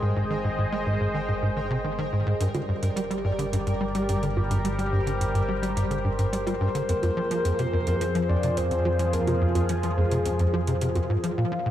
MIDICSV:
0, 0, Header, 1, 7, 480
1, 0, Start_track
1, 0, Tempo, 560748
1, 138, Time_signature, 4, 2, 24, 8
1, 10021, End_track
2, 0, Start_track
2, 0, Title_t, "Synth texture"
2, 0, Program_c, 0, 99
2, 0, Note_on_c, 0, 70, 82
2, 0, Note_on_c, 0, 79, 82
2, 9747, Note_off_c, 0, 70, 0
2, 9748, Note_off_c, 0, 79, 0
2, 10021, End_track
3, 0, Start_track
3, 0, Title_t, "Soft synth lead"
3, 0, Program_c, 1, 80
3, 5896, Note_on_c, 1, 70, 88
3, 6855, Note_on_c, 1, 72, 95
3, 6868, Note_off_c, 1, 70, 0
3, 7097, Note_on_c, 1, 74, 102
3, 7110, Note_off_c, 1, 72, 0
3, 7339, Note_on_c, 1, 72, 100
3, 7352, Note_off_c, 1, 74, 0
3, 7818, Note_on_c, 1, 70, 82
3, 7831, Note_off_c, 1, 72, 0
3, 8298, Note_off_c, 1, 70, 0
3, 8537, Note_on_c, 1, 68, 107
3, 8984, Note_off_c, 1, 68, 0
3, 9735, Note_on_c, 1, 77, 111
3, 10021, Note_off_c, 1, 77, 0
3, 10021, End_track
4, 0, Start_track
4, 0, Title_t, "Analog synth pad"
4, 0, Program_c, 2, 89
4, 0, Note_on_c, 2, 56, 72
4, 0, Note_on_c, 2, 68, 70
4, 0, Note_on_c, 2, 72, 68
4, 0, Note_on_c, 2, 75, 88
4, 2023, Note_off_c, 2, 68, 0
4, 2023, Note_off_c, 2, 72, 0
4, 2024, Note_off_c, 2, 56, 0
4, 2024, Note_off_c, 2, 75, 0
4, 2056, Note_on_c, 2, 67, 71
4, 2056, Note_on_c, 2, 74, 85
4, 2058, Note_on_c, 2, 55, 79
4, 2058, Note_on_c, 2, 70, 68
4, 3958, Note_off_c, 2, 74, 0
4, 3980, Note_on_c, 2, 72, 90
4, 5863, Note_off_c, 2, 67, 0
4, 5864, Note_off_c, 2, 55, 0
4, 5864, Note_off_c, 2, 70, 0
4, 5897, Note_on_c, 2, 65, 74
4, 5897, Note_on_c, 2, 68, 70
4, 5898, Note_on_c, 2, 53, 82
4, 9703, Note_off_c, 2, 65, 0
4, 9703, Note_off_c, 2, 68, 0
4, 9704, Note_off_c, 2, 53, 0
4, 9705, Note_off_c, 2, 72, 0
4, 9738, Note_on_c, 2, 61, 80
4, 9738, Note_on_c, 2, 82, 87
4, 9740, Note_on_c, 2, 65, 72
4, 10021, Note_off_c, 2, 61, 0
4, 10021, Note_off_c, 2, 65, 0
4, 10021, Note_off_c, 2, 82, 0
4, 10021, End_track
5, 0, Start_track
5, 0, Title_t, "Analog synth bass"
5, 0, Program_c, 3, 38
5, 18, Note_on_c, 3, 44, 75
5, 107, Note_off_c, 3, 44, 0
5, 139, Note_on_c, 3, 44, 80
5, 198, Note_off_c, 3, 44, 0
5, 260, Note_on_c, 3, 51, 75
5, 318, Note_off_c, 3, 51, 0
5, 378, Note_on_c, 3, 44, 74
5, 414, Note_off_c, 3, 44, 0
5, 499, Note_on_c, 3, 44, 75
5, 558, Note_off_c, 3, 44, 0
5, 620, Note_on_c, 3, 56, 80
5, 654, Note_off_c, 3, 56, 0
5, 740, Note_on_c, 3, 44, 70
5, 828, Note_off_c, 3, 44, 0
5, 860, Note_on_c, 3, 44, 75
5, 918, Note_off_c, 3, 44, 0
5, 979, Note_on_c, 3, 51, 73
5, 1038, Note_off_c, 3, 51, 0
5, 1098, Note_on_c, 3, 44, 74
5, 1134, Note_off_c, 3, 44, 0
5, 1218, Note_on_c, 3, 44, 74
5, 1277, Note_off_c, 3, 44, 0
5, 1339, Note_on_c, 3, 51, 70
5, 1374, Note_off_c, 3, 51, 0
5, 1459, Note_on_c, 3, 48, 94
5, 1518, Note_off_c, 3, 48, 0
5, 1578, Note_on_c, 3, 51, 75
5, 1637, Note_off_c, 3, 51, 0
5, 1699, Note_on_c, 3, 51, 95
5, 1758, Note_off_c, 3, 51, 0
5, 1819, Note_on_c, 3, 44, 71
5, 1908, Note_off_c, 3, 44, 0
5, 1939, Note_on_c, 3, 44, 96
5, 1998, Note_off_c, 3, 44, 0
5, 2057, Note_on_c, 3, 43, 85
5, 2117, Note_off_c, 3, 43, 0
5, 2178, Note_on_c, 3, 50, 71
5, 2237, Note_off_c, 3, 50, 0
5, 2299, Note_on_c, 3, 43, 74
5, 2334, Note_off_c, 3, 43, 0
5, 2417, Note_on_c, 3, 43, 78
5, 2477, Note_off_c, 3, 43, 0
5, 2536, Note_on_c, 3, 55, 80
5, 2573, Note_off_c, 3, 55, 0
5, 2658, Note_on_c, 3, 55, 75
5, 2717, Note_off_c, 3, 55, 0
5, 2777, Note_on_c, 3, 43, 71
5, 2837, Note_off_c, 3, 43, 0
5, 2898, Note_on_c, 3, 50, 76
5, 2957, Note_off_c, 3, 50, 0
5, 3019, Note_on_c, 3, 43, 79
5, 3054, Note_off_c, 3, 43, 0
5, 3137, Note_on_c, 3, 43, 73
5, 3197, Note_off_c, 3, 43, 0
5, 3258, Note_on_c, 3, 55, 72
5, 3293, Note_off_c, 3, 55, 0
5, 3379, Note_on_c, 3, 55, 73
5, 3438, Note_off_c, 3, 55, 0
5, 3497, Note_on_c, 3, 43, 73
5, 3557, Note_off_c, 3, 43, 0
5, 3617, Note_on_c, 3, 50, 71
5, 3677, Note_off_c, 3, 50, 0
5, 3737, Note_on_c, 3, 43, 70
5, 3773, Note_off_c, 3, 43, 0
5, 3856, Note_on_c, 3, 43, 75
5, 3916, Note_off_c, 3, 43, 0
5, 3977, Note_on_c, 3, 55, 77
5, 4013, Note_off_c, 3, 55, 0
5, 4095, Note_on_c, 3, 55, 73
5, 4156, Note_off_c, 3, 55, 0
5, 4215, Note_on_c, 3, 43, 73
5, 4276, Note_off_c, 3, 43, 0
5, 4334, Note_on_c, 3, 50, 75
5, 4395, Note_off_c, 3, 50, 0
5, 4454, Note_on_c, 3, 43, 75
5, 4492, Note_off_c, 3, 43, 0
5, 4574, Note_on_c, 3, 43, 74
5, 4635, Note_off_c, 3, 43, 0
5, 4694, Note_on_c, 3, 55, 72
5, 4732, Note_off_c, 3, 55, 0
5, 4815, Note_on_c, 3, 55, 76
5, 4876, Note_off_c, 3, 55, 0
5, 4933, Note_on_c, 3, 43, 80
5, 4995, Note_off_c, 3, 43, 0
5, 5055, Note_on_c, 3, 50, 73
5, 5116, Note_off_c, 3, 50, 0
5, 5174, Note_on_c, 3, 43, 73
5, 5212, Note_off_c, 3, 43, 0
5, 5295, Note_on_c, 3, 43, 73
5, 5356, Note_off_c, 3, 43, 0
5, 5416, Note_on_c, 3, 55, 75
5, 5452, Note_off_c, 3, 55, 0
5, 5535, Note_on_c, 3, 55, 76
5, 5596, Note_off_c, 3, 55, 0
5, 5656, Note_on_c, 3, 43, 78
5, 5716, Note_off_c, 3, 43, 0
5, 5776, Note_on_c, 3, 50, 76
5, 5836, Note_off_c, 3, 50, 0
5, 5897, Note_on_c, 3, 41, 80
5, 5933, Note_off_c, 3, 41, 0
5, 6016, Note_on_c, 3, 41, 77
5, 6076, Note_off_c, 3, 41, 0
5, 6137, Note_on_c, 3, 53, 72
5, 6173, Note_off_c, 3, 53, 0
5, 6257, Note_on_c, 3, 53, 77
5, 6317, Note_off_c, 3, 53, 0
5, 6376, Note_on_c, 3, 41, 75
5, 6436, Note_off_c, 3, 41, 0
5, 6497, Note_on_c, 3, 48, 77
5, 6557, Note_off_c, 3, 48, 0
5, 6617, Note_on_c, 3, 41, 75
5, 6653, Note_off_c, 3, 41, 0
5, 6738, Note_on_c, 3, 41, 72
5, 6797, Note_off_c, 3, 41, 0
5, 6856, Note_on_c, 3, 53, 80
5, 6893, Note_off_c, 3, 53, 0
5, 6976, Note_on_c, 3, 53, 76
5, 7036, Note_off_c, 3, 53, 0
5, 7097, Note_on_c, 3, 41, 76
5, 7157, Note_off_c, 3, 41, 0
5, 7218, Note_on_c, 3, 48, 71
5, 7277, Note_off_c, 3, 48, 0
5, 7338, Note_on_c, 3, 41, 75
5, 7373, Note_off_c, 3, 41, 0
5, 7455, Note_on_c, 3, 41, 73
5, 7516, Note_off_c, 3, 41, 0
5, 7576, Note_on_c, 3, 53, 75
5, 7613, Note_off_c, 3, 53, 0
5, 7697, Note_on_c, 3, 53, 73
5, 7757, Note_off_c, 3, 53, 0
5, 7816, Note_on_c, 3, 41, 83
5, 7876, Note_off_c, 3, 41, 0
5, 7937, Note_on_c, 3, 48, 75
5, 7997, Note_off_c, 3, 48, 0
5, 8057, Note_on_c, 3, 41, 77
5, 8093, Note_off_c, 3, 41, 0
5, 8177, Note_on_c, 3, 41, 75
5, 8237, Note_off_c, 3, 41, 0
5, 8297, Note_on_c, 3, 53, 77
5, 8333, Note_off_c, 3, 53, 0
5, 8419, Note_on_c, 3, 53, 73
5, 8477, Note_off_c, 3, 53, 0
5, 8538, Note_on_c, 3, 41, 76
5, 8597, Note_off_c, 3, 41, 0
5, 8658, Note_on_c, 3, 48, 77
5, 8717, Note_off_c, 3, 48, 0
5, 8777, Note_on_c, 3, 41, 79
5, 8813, Note_off_c, 3, 41, 0
5, 8898, Note_on_c, 3, 41, 75
5, 8957, Note_off_c, 3, 41, 0
5, 9019, Note_on_c, 3, 53, 73
5, 9078, Note_off_c, 3, 53, 0
5, 9138, Note_on_c, 3, 48, 76
5, 9197, Note_off_c, 3, 48, 0
5, 9259, Note_on_c, 3, 48, 76
5, 9318, Note_off_c, 3, 48, 0
5, 9378, Note_on_c, 3, 41, 74
5, 9414, Note_off_c, 3, 41, 0
5, 9499, Note_on_c, 3, 44, 77
5, 9558, Note_off_c, 3, 44, 0
5, 9617, Note_on_c, 3, 53, 73
5, 9677, Note_off_c, 3, 53, 0
5, 9739, Note_on_c, 3, 46, 81
5, 9798, Note_off_c, 3, 46, 0
5, 9858, Note_on_c, 3, 53, 73
5, 9917, Note_off_c, 3, 53, 0
5, 9978, Note_on_c, 3, 46, 77
5, 10014, Note_off_c, 3, 46, 0
5, 10021, End_track
6, 0, Start_track
6, 0, Title_t, "Synth drone"
6, 0, Program_c, 4, 95
6, 0, Note_on_c, 4, 32, 91
6, 2033, Note_off_c, 4, 32, 0
6, 2059, Note_on_c, 4, 31, 89
6, 5874, Note_off_c, 4, 31, 0
6, 5898, Note_on_c, 4, 41, 90
6, 9714, Note_off_c, 4, 41, 0
6, 9738, Note_on_c, 4, 34, 92
6, 10021, Note_off_c, 4, 34, 0
6, 10021, End_track
7, 0, Start_track
7, 0, Title_t, "Drums"
7, 2060, Note_on_c, 9, 42, 58
7, 2145, Note_off_c, 9, 42, 0
7, 2180, Note_on_c, 9, 42, 33
7, 2180, Note_on_c, 9, 61, 65
7, 2265, Note_off_c, 9, 42, 0
7, 2265, Note_off_c, 9, 61, 0
7, 2421, Note_on_c, 9, 42, 48
7, 2506, Note_off_c, 9, 42, 0
7, 2541, Note_on_c, 9, 42, 62
7, 2627, Note_off_c, 9, 42, 0
7, 2663, Note_on_c, 9, 42, 32
7, 2748, Note_off_c, 9, 42, 0
7, 2903, Note_on_c, 9, 42, 49
7, 2989, Note_off_c, 9, 42, 0
7, 3023, Note_on_c, 9, 42, 58
7, 3109, Note_off_c, 9, 42, 0
7, 3141, Note_on_c, 9, 42, 33
7, 3227, Note_off_c, 9, 42, 0
7, 3380, Note_on_c, 9, 42, 46
7, 3466, Note_off_c, 9, 42, 0
7, 3500, Note_on_c, 9, 42, 61
7, 3586, Note_off_c, 9, 42, 0
7, 3620, Note_on_c, 9, 42, 34
7, 3705, Note_off_c, 9, 42, 0
7, 3740, Note_on_c, 9, 61, 49
7, 3826, Note_off_c, 9, 61, 0
7, 3860, Note_on_c, 9, 42, 49
7, 3945, Note_off_c, 9, 42, 0
7, 3979, Note_on_c, 9, 42, 54
7, 4065, Note_off_c, 9, 42, 0
7, 4101, Note_on_c, 9, 42, 33
7, 4186, Note_off_c, 9, 42, 0
7, 4341, Note_on_c, 9, 42, 47
7, 4426, Note_off_c, 9, 42, 0
7, 4461, Note_on_c, 9, 42, 59
7, 4546, Note_off_c, 9, 42, 0
7, 4580, Note_on_c, 9, 42, 33
7, 4666, Note_off_c, 9, 42, 0
7, 4820, Note_on_c, 9, 42, 49
7, 4905, Note_off_c, 9, 42, 0
7, 4938, Note_on_c, 9, 42, 60
7, 5024, Note_off_c, 9, 42, 0
7, 5059, Note_on_c, 9, 42, 34
7, 5145, Note_off_c, 9, 42, 0
7, 5298, Note_on_c, 9, 42, 45
7, 5383, Note_off_c, 9, 42, 0
7, 5421, Note_on_c, 9, 42, 60
7, 5506, Note_off_c, 9, 42, 0
7, 5540, Note_on_c, 9, 42, 34
7, 5540, Note_on_c, 9, 61, 63
7, 5626, Note_off_c, 9, 42, 0
7, 5626, Note_off_c, 9, 61, 0
7, 5779, Note_on_c, 9, 42, 46
7, 5865, Note_off_c, 9, 42, 0
7, 5899, Note_on_c, 9, 42, 57
7, 5985, Note_off_c, 9, 42, 0
7, 6018, Note_on_c, 9, 42, 34
7, 6018, Note_on_c, 9, 61, 63
7, 6104, Note_off_c, 9, 42, 0
7, 6104, Note_off_c, 9, 61, 0
7, 6258, Note_on_c, 9, 42, 47
7, 6343, Note_off_c, 9, 42, 0
7, 6378, Note_on_c, 9, 42, 59
7, 6464, Note_off_c, 9, 42, 0
7, 6497, Note_on_c, 9, 42, 32
7, 6582, Note_off_c, 9, 42, 0
7, 6736, Note_on_c, 9, 42, 47
7, 6822, Note_off_c, 9, 42, 0
7, 6858, Note_on_c, 9, 42, 57
7, 6944, Note_off_c, 9, 42, 0
7, 6978, Note_on_c, 9, 42, 33
7, 7064, Note_off_c, 9, 42, 0
7, 7219, Note_on_c, 9, 42, 46
7, 7304, Note_off_c, 9, 42, 0
7, 7337, Note_on_c, 9, 42, 58
7, 7423, Note_off_c, 9, 42, 0
7, 7458, Note_on_c, 9, 42, 33
7, 7543, Note_off_c, 9, 42, 0
7, 7578, Note_on_c, 9, 61, 55
7, 7664, Note_off_c, 9, 61, 0
7, 7699, Note_on_c, 9, 42, 46
7, 7784, Note_off_c, 9, 42, 0
7, 7818, Note_on_c, 9, 42, 58
7, 7903, Note_off_c, 9, 42, 0
7, 7938, Note_on_c, 9, 42, 33
7, 7938, Note_on_c, 9, 61, 64
7, 8024, Note_off_c, 9, 42, 0
7, 8024, Note_off_c, 9, 61, 0
7, 8177, Note_on_c, 9, 42, 49
7, 8177, Note_on_c, 9, 61, 50
7, 8262, Note_off_c, 9, 42, 0
7, 8262, Note_off_c, 9, 61, 0
7, 8296, Note_on_c, 9, 42, 61
7, 8381, Note_off_c, 9, 42, 0
7, 8417, Note_on_c, 9, 42, 33
7, 8502, Note_off_c, 9, 42, 0
7, 8658, Note_on_c, 9, 42, 50
7, 8744, Note_off_c, 9, 42, 0
7, 8778, Note_on_c, 9, 42, 60
7, 8864, Note_off_c, 9, 42, 0
7, 8897, Note_on_c, 9, 42, 33
7, 8983, Note_off_c, 9, 42, 0
7, 9017, Note_on_c, 9, 61, 64
7, 9103, Note_off_c, 9, 61, 0
7, 9137, Note_on_c, 9, 42, 49
7, 9223, Note_off_c, 9, 42, 0
7, 9257, Note_on_c, 9, 42, 62
7, 9343, Note_off_c, 9, 42, 0
7, 9377, Note_on_c, 9, 42, 34
7, 9377, Note_on_c, 9, 61, 66
7, 9463, Note_off_c, 9, 42, 0
7, 9463, Note_off_c, 9, 61, 0
7, 9619, Note_on_c, 9, 42, 47
7, 9705, Note_off_c, 9, 42, 0
7, 10021, End_track
0, 0, End_of_file